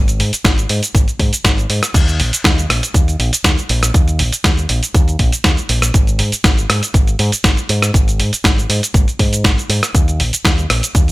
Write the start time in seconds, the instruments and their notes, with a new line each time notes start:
Already playing: fingered electric bass G#1
0.08 closed hi-hat, shaker
0.20 fingered electric bass G#2, open hi-hat
0.33 muted fingered electric bass stroke, closed hi-hat, shaker
0.45 fingered electric bass G#1, kick, snare, closed hi-hat, shaker
0.58 closed hi-hat, shaker
0.69 fingered electric bass G#2, open hi-hat
0.83 closed hi-hat, shaker
0.95 fingered electric bass G#1, kick, closed hi-hat, shaker
1.08 closed hi-hat, shaker
1.19 fingered electric bass G#2, kick, open hi-hat
1.33 muted fingered electric bass stroke, closed hi-hat, shaker
1.44 fingered electric bass G#1, kick, snare, closed hi-hat, shaker
1.58 closed hi-hat, shaker
1.70 fingered electric bass G#2, open hi-hat
1.83 cross-stick, closed hi-hat, shaker
1.94 fingered electric bass D#2, kick, closed hi-hat, crash, shaker
2.08 closed hi-hat, shaker
2.20 fingered electric bass A#1, open hi-hat
2.33 closed hi-hat, shaker
2.44 fingered electric bass D#2, kick, snare, closed hi-hat, shaker
2.58 closed hi-hat, shaker
2.69 fingered electric bass A#1, cross-stick, open hi-hat
2.83 closed hi-hat, shaker
2.94 fingered electric bass D#2, kick, closed hi-hat, shaker
3.08 closed hi-hat, shaker
3.19 fingered electric bass A#1, open hi-hat
3.33 closed hi-hat, shaker
3.44 fingered electric bass D#2, kick, snare, closed hi-hat, shaker
3.58 closed hi-hat, shaker
3.69 fingered electric bass A#1, open hi-hat
3.83 cross-stick, closed hi-hat, shaker
3.94 fingered electric bass D#2, kick, closed hi-hat, shaker
4.08 closed hi-hat, shaker
4.19 fingered electric bass A#1, open hi-hat
4.32 closed hi-hat, shaker
4.44 fingered electric bass D#2, kick, snare, closed hi-hat, shaker
4.58 closed hi-hat, shaker
4.69 fingered electric bass A#1, open hi-hat
4.83 closed hi-hat, shaker
4.94 fingered electric bass D#2, kick, closed hi-hat, shaker
5.08 closed hi-hat, shaker
5.19 fingered electric bass A#1, kick, open hi-hat
5.32 closed hi-hat, shaker
5.44 fingered electric bass D#2, kick, snare, closed hi-hat, shaker
5.57 closed hi-hat, shaker
5.69 fingered electric bass A#1, open hi-hat
5.82 cross-stick, closed hi-hat, shaker
5.94 fingered electric bass G#1, kick, closed hi-hat, shaker
6.07 closed hi-hat, shaker
6.19 fingered electric bass G#2, open hi-hat
6.32 muted fingered electric bass stroke, closed hi-hat, shaker
6.44 fingered electric bass G#1, kick, snare, closed hi-hat, shaker
6.58 closed hi-hat, shaker
6.70 fingered electric bass G#2, cross-stick, open hi-hat
6.83 closed hi-hat, shaker
6.94 fingered electric bass G#1, kick, closed hi-hat, shaker
7.07 closed hi-hat, shaker
7.19 fingered electric bass G#2, open hi-hat
7.32 muted fingered electric bass stroke, closed hi-hat, shaker
7.44 fingered electric bass G#1, kick, snare, closed hi-hat, shaker
7.57 closed hi-hat, shaker
7.69 fingered electric bass G#2, open hi-hat
7.82 cross-stick, closed hi-hat, shaker
7.94 fingered electric bass G#1, kick, closed hi-hat, shaker
8.08 closed hi-hat, shaker
8.19 fingered electric bass G#2, open hi-hat
8.33 muted fingered electric bass stroke, closed hi-hat, shaker
8.44 fingered electric bass G#1, kick, snare, closed hi-hat, shaker
8.58 closed hi-hat, shaker
8.69 fingered electric bass G#2, open hi-hat
8.83 closed hi-hat, shaker
8.94 fingered electric bass G#1, kick, closed hi-hat, shaker
9.08 closed hi-hat, shaker
9.19 fingered electric bass G#2, kick, open hi-hat
9.33 closed hi-hat, shaker
9.44 fingered electric bass G#1, kick, snare, closed hi-hat, shaker
9.58 closed hi-hat, shaker
9.69 fingered electric bass G#2, open hi-hat
9.83 cross-stick, closed hi-hat, shaker
9.95 fingered electric bass D#2, kick, closed hi-hat, shaker
10.08 closed hi-hat, shaker
10.20 fingered electric bass A#1, open hi-hat
10.33 muted fingered electric bass stroke, closed hi-hat, shaker
10.45 fingered electric bass D#2, kick, snare, closed hi-hat, shaker
10.58 closed hi-hat, shaker
10.70 fingered electric bass A#1, cross-stick, open hi-hat
10.83 closed hi-hat, shaker
10.95 fingered electric bass D#2, kick, closed hi-hat, shaker
11.08 closed hi-hat, shaker